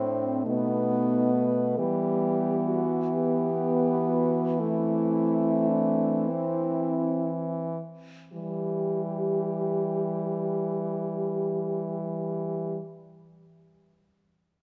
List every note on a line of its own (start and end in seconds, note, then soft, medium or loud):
0.00 0.43 A2 soft
0.00 0.46 C4 soft
0.00 0.47 C4 soft
0.00 0.48 D4 soft
0.46 1.76 B2 soft
0.46 1.79 A3 soft
0.46 1.76 B3 soft
0.46 1.33 D#4 soft
1.34 1.80 B4 medium
1.78 7.80 E3 soft
1.78 2.84 G3 soft
1.78 4.27 B3 soft
1.78 2.69 G4 medium
2.68 3.15 F#4 medium
3.13 4.62 B3 medium
3.13 4.10 G4 medium
4.08 4.59 F#4 medium
4.60 6.31 A3 soft
4.60 7.80 C4 soft
4.60 5.70 E4 medium
5.69 6.28 D4 medium
6.27 7.27 C4 soft
6.27 7.61 E4 soft
8.33 12.79 E3 soft
8.33 12.80 G3 soft
8.33 12.78 G4 soft
8.33 12.79 G4 soft